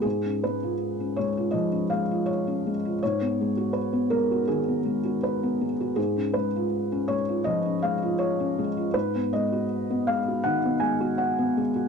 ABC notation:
X:1
M:4/4
L:1/16
Q:1/4=81
K:G#dor
V:1 name="Felt piano"
G2 B4 c2 d2 e2 c4 | c4 B2 A2 G4 B4 | G2 B4 c2 d2 e2 c4 | B2 d4 e2 f2 g2 f4 |]
V:2 name="Felt piano"
G,, C G, E2 C G, E E, C G, E2 C G, E | G,, B, G, F2 B, G, F D, B, G, F2 B, G, F | G,, C G, E2 C G, E E, C G, E2 C G, E | G,, B, G, F2 B, G, F D, B, G, F2 B, G, F |]